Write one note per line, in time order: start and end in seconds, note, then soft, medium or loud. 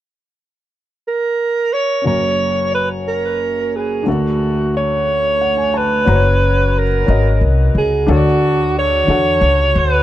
1.08 1.75 A#4 medium
1.73 2.06 C#5 medium
2.02 4.03 F#1 soft
2.02 4.03 F#2 soft
2.02 4.01 C#4 soft
2.02 4.02 F#4 soft
2.07 2.69 C#5 medium
2.07 4.05 C#5 soft
2.07 4.03 A#5 soft
2.75 2.89 B4 medium
3.08 3.77 A#4 medium
3.76 4.10 G#4 medium
4.03 6.04 D2 soft
4.03 6.04 D3 soft
4.03 6.02 D4 soft
4.03 6.03 F#4 soft
4.08 4.75 F#4 medium
4.08 6.04 A4 soft
4.08 5.40 F#5 soft
4.77 5.79 C#5 medium
5.41 5.57 F#5 soft
5.57 5.73 G#5 soft
5.74 6.80 B4 medium
5.74 6.05 A5 medium
6.05 7.04 F#1 medium
6.05 6.81 C#4 medium
6.05 6.82 F#4 medium
6.05 6.83 A#5 medium
6.09 6.15 C5 medium
6.15 6.86 C#5 medium
6.78 7.43 A#4 medium
7.06 7.39 G#1 medium
7.06 7.82 C#4 soft
7.06 7.82 F#4 soft
7.06 7.83 A#4 soft
7.10 7.84 D#5 medium
7.41 7.72 C2 medium
7.75 8.06 C#2 medium
7.75 8.13 G#4 medium
8.07 9.04 D2 medium
8.07 9.05 D3 soft
8.07 8.82 D4 medium
8.07 8.83 F#4 medium
8.07 8.83 A4 medium
8.07 8.16 C#5 medium
8.11 8.77 F#4 medium
8.17 8.87 D5 medium
8.78 9.80 C#5 medium
9.07 9.39 E2 medium
9.07 9.82 D4 medium
9.07 9.83 F#4 medium
9.07 9.84 A4 soft
9.07 9.84 F#5 medium
9.41 9.72 C#2 medium
9.76 10.03 D2 medium
9.76 10.03 B4 medium